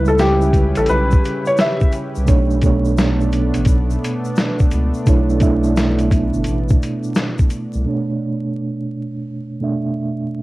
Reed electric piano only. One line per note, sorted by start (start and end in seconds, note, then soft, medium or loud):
0.00 2.29 C#3 medium
0.00 2.29 G3 medium
0.00 2.29 E4 medium
0.00 2.29 B4 medium
2.25 2.59 B2 medium
2.25 2.59 A3 medium
2.25 2.60 D4 medium
2.25 2.60 C#5 loud
2.62 3.91 B2 medium
2.62 3.92 A3 medium
2.62 3.92 D4 medium
2.62 3.93 C#5 loud
5.05 5.38 B2 medium
5.05 5.39 A3 medium
5.05 5.39 D4 medium
5.05 5.39 E4 medium
5.09 5.40 C#5 loud
5.39 6.69 B2 medium
5.39 6.70 A3 loud
5.39 6.70 D4 medium
5.39 6.71 E4 medium
5.39 6.71 E5 loud
7.84 9.14 B2 medium
7.84 9.15 A3 medium
7.84 9.15 D4 medium
7.84 9.16 C#5 medium
9.60 10.42 B2 medium
9.60 10.42 A3 medium
9.60 10.42 D4 medium
9.60 10.42 E5 medium